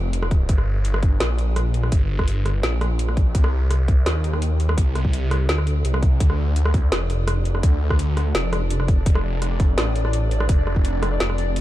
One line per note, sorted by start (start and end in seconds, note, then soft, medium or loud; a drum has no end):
0.00 0.48 F1 medium
0.13 closed hi-hat medium
0.23 cross-stick medium
0.31 kick loud
0.31 closed hi-hat soft
0.49 1.19 G1 medium
0.49 kick loud
0.49 closed hi-hat medium
0.58 cross-stick soft
0.85 closed hi-hat medium
0.94 cross-stick medium
1.03 kick loud
1.03 closed hi-hat soft
1.20 1.91 A#1 medium
1.20 cross-stick soft
1.20 snare loud
1.20 closed hi-hat medium
1.38 closed hi-hat soft
1.56 cross-stick medium
1.56 closed hi-hat medium
1.74 closed hi-hat soft
1.83 cross-stick soft
1.92 2.62 G1 medium
1.92 kick loud
1.92 closed hi-hat medium
2.19 kick medium
2.19 cross-stick medium
2.28 closed hi-hat medium
2.46 cross-stick soft
2.46 closed hi-hat soft
2.63 3.33 A#1 medium
2.63 snare loud
2.63 closed hi-hat medium
2.81 cross-stick medium
2.81 closed hi-hat soft
2.99 closed hi-hat medium
3.09 cross-stick soft
3.17 kick medium
3.17 closed hi-hat soft
3.35 4.05 C2 medium
3.35 kick loud
3.35 closed hi-hat medium
3.44 cross-stick medium
3.71 cross-stick soft
3.71 closed hi-hat medium
3.88 kick medium
3.88 closed hi-hat soft
4.06 4.76 D#2 medium
4.06 cross-stick medium
4.06 snare loud
4.06 closed hi-hat medium
4.24 closed hi-hat soft
4.33 cross-stick medium
4.42 closed hi-hat medium
4.60 closed hi-hat soft
4.69 cross-stick medium
4.78 5.48 C2 medium
4.78 kick loud
4.78 closed hi-hat medium
4.95 cross-stick medium
4.95 closed hi-hat soft
5.05 kick medium
5.13 closed hi-hat medium
5.31 cross-stick medium
5.31 closed hi-hat soft
5.49 5.83 D2 medium
5.49 snare loud
5.49 closed hi-hat medium
5.58 cross-stick medium
5.67 closed hi-hat soft
5.85 6.19 C2 medium
5.85 closed hi-hat medium
5.94 cross-stick medium
6.03 kick medium
6.03 closed hi-hat soft
6.20 6.91 D2 medium
6.20 11.61 D4 medium
6.20 11.61 D5 medium
6.20 kick loud
6.20 closed hi-hat medium
6.30 cross-stick medium
6.56 closed hi-hat medium
6.65 cross-stick medium
6.74 kick loud
6.74 closed hi-hat soft
6.92 7.62 F1 medium
6.92 cross-stick soft
6.92 snare loud
6.92 closed hi-hat medium
7.10 closed hi-hat soft
7.28 cross-stick medium
7.28 closed hi-hat medium
7.45 closed hi-hat soft
7.55 cross-stick medium
7.63 8.33 D2 medium
7.63 kick loud
7.63 closed hi-hat medium
7.90 kick medium
7.90 cross-stick medium
7.99 closed hi-hat medium
8.17 cross-stick soft
8.17 closed hi-hat soft
8.35 9.05 F1 medium
8.35 snare loud
8.35 closed hi-hat medium
8.53 cross-stick medium
8.53 closed hi-hat soft
8.70 closed hi-hat medium
8.80 cross-stick soft
8.88 kick loud
8.88 closed hi-hat soft
9.06 9.76 F1 medium
9.06 kick loud
9.06 closed hi-hat medium
9.15 cross-stick medium
9.42 cross-stick soft
9.42 closed hi-hat medium
9.60 kick loud
9.60 closed hi-hat soft
9.78 10.48 A1 medium
9.78 cross-stick medium
9.78 snare loud
9.78 closed hi-hat medium
9.96 closed hi-hat soft
10.05 cross-stick soft
10.13 closed hi-hat medium
10.31 closed hi-hat soft
10.40 cross-stick medium
10.49 11.19 F1 medium
10.49 kick loud
10.49 closed hi-hat medium
10.67 cross-stick soft
10.76 kick medium
10.85 closed hi-hat medium
11.03 cross-stick medium
11.03 closed hi-hat soft
11.20 11.61 F1 medium
11.20 snare loud
11.20 closed hi-hat medium
11.30 cross-stick soft
11.38 closed hi-hat soft
11.56 closed hi-hat medium